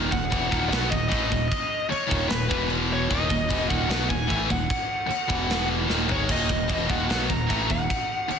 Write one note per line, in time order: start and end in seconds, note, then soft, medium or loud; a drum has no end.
0.00 0.11 D#1 medium
0.00 0.10 A#2 loud
0.00 0.11 D#3 loud
0.10 0.31 D#1 medium
0.10 0.27 D#2 medium
0.10 0.27 A#2 medium
0.10 0.68 F#5 medium
0.10 kick medium
0.30 0.51 E1 medium
0.30 0.48 E2 medium
0.30 0.49 B2 medium
0.30 0.49 E3 medium
0.30 kick loud
0.30 china medium
0.49 0.69 D#2 medium
0.49 0.68 A#2 loud
0.49 0.68 D#3 loud
0.49 kick loud
0.53 0.71 D#1 medium
0.68 0.90 B1 medium
0.68 0.88 B2 medium
0.68 0.89 F#3 loud
0.68 0.90 B3 loud
0.68 0.89 F#5 medium
0.72 snare loud
0.72 china medium
0.88 1.05 D#2 medium
0.88 1.06 A#2 medium
0.88 1.07 D#5 medium
0.92 1.10 D#1 medium
0.92 kick medium
1.08 1.30 A1 medium
1.08 1.29 A2 medium
1.08 1.29 E3 medium
1.08 1.30 A3 medium
1.08 1.47 D#5 medium
1.08 kick loud
1.08 china medium
1.28 1.50 D#1 medium
1.28 1.45 D#2 medium
1.28 1.46 A#2 medium
1.28 kick medium
1.48 1.90 D#5 medium
1.48 kick loud
1.48 china medium
1.89 2.29 C#5 medium
1.89 muted distorted electric guitar stroke medium
1.89 muted picked electric bass stroke soft
1.89 china medium
2.07 2.28 D#2 medium
2.07 2.29 A#2 medium
2.07 2.29 D#3 medium
2.11 2.29 D#1 medium
2.11 kick loud
2.29 2.48 D#1 medium
2.29 2.46 D#2 medium
2.29 2.46 A#2 medium
2.29 2.67 B4 medium
2.29 snare loud
2.29 china medium
2.48 3.07 E1 medium
2.48 3.08 E2 medium
2.48 3.09 B2 loud
2.48 3.09 E3 medium
2.48 kick loud
2.70 china medium
2.93 3.12 C#5 medium
3.09 3.29 D#1 medium
3.09 3.27 D#2 medium
3.09 3.28 A#2 loud
3.09 3.29 D#3 loud
3.09 3.69 D#5 loud
3.09 kick loud
3.09 china medium
3.29 3.49 D#1 medium
3.29 3.45 D#2 medium
3.29 3.45 A#2 medium
3.29 kick medium
3.48 3.69 E1 medium
3.48 3.67 E2 medium
3.48 3.67 B2 medium
3.48 3.68 E3 loud
3.48 kick loud
3.48 china medium
3.67 3.89 D#1 medium
3.67 3.88 D#2 medium
3.67 3.86 A#2 medium
3.67 3.88 D#3 loud
3.67 3.89 F#5 loud
3.67 kick loud
3.87 4.08 B1 loud
3.87 4.08 B2 medium
3.87 4.08 F#3 medium
3.87 4.08 B3 loud
3.87 4.11 F#5 medium
3.87 china medium
3.91 snare loud
4.08 4.25 D#2 medium
4.08 4.25 A#2 medium
4.08 4.46 G#5 loud
4.08 kick loud
4.27 4.49 A1 medium
4.27 4.47 A2 medium
4.27 4.48 E3 medium
4.27 4.48 A3 loud
4.27 kick loud
4.27 china medium
4.47 4.69 D#1 medium
4.47 4.64 D#2 medium
4.47 4.64 A#2 medium
4.47 kick medium
4.52 5.67 F#5 medium
4.70 kick loud
4.70 china medium
5.07 muted distorted electric guitar stroke medium
5.07 muted picked electric bass stroke soft
5.07 china medium
5.28 5.86 E1 medium
5.28 5.87 E2 medium
5.28 5.87 B2 medium
5.28 5.87 E3 loud
5.28 kick loud
5.50 snare loud
5.50 china medium
5.87 6.08 D#1 medium
5.87 6.08 D#2 medium
5.87 6.07 A#2 medium
5.87 6.07 D#3 loud
5.87 snare medium
6.08 6.29 G#1 medium
6.08 6.28 G#2 medium
6.08 6.28 D#3 medium
6.08 6.28 G#3 loud
6.08 floor tom medium
6.12 6.31 C#5 medium
6.28 6.48 D#1 medium
6.28 6.46 D#2 medium
6.28 6.47 A#2 loud
6.28 6.49 D#3 medium
6.28 6.90 D#5 medium
6.28 kick loud
6.28 china medium
6.28 splash medium
6.47 6.68 D#1 medium
6.47 6.65 D#2 medium
6.47 6.65 A#2 medium
6.47 kick medium
6.68 6.88 E1 medium
6.68 6.87 E2 medium
6.68 6.88 B2 medium
6.68 6.88 E3 loud
6.68 kick loud
6.68 china medium
6.87 7.09 D#1 medium
6.87 7.08 D#2 medium
6.87 7.08 A#2 loud
6.87 7.08 D#3 loud
6.87 7.09 F#5 medium
6.87 kick loud
7.08 7.29 B1 medium
7.08 7.28 B2 medium
7.08 7.29 F#3 loud
7.08 7.29 B3 loud
7.08 7.16 F#5 loud
7.08 snare loud
7.08 china medium
7.29 7.48 D#1 medium
7.29 7.46 D#2 medium
7.29 7.46 A#2 medium
7.29 7.71 A#5 loud
7.29 kick medium
7.49 7.69 A1 loud
7.49 7.68 A2 medium
7.49 7.69 E3 medium
7.49 7.69 A3 loud
7.49 kick medium
7.49 china medium
7.69 7.89 D#1 medium
7.69 7.85 D#2 medium
7.69 7.85 A#2 medium
7.69 8.39 F#5 medium
7.69 kick medium
7.90 kick loud
7.90 china medium
8.29 muted distorted electric guitar stroke medium
8.29 muted picked electric bass stroke soft
8.29 china medium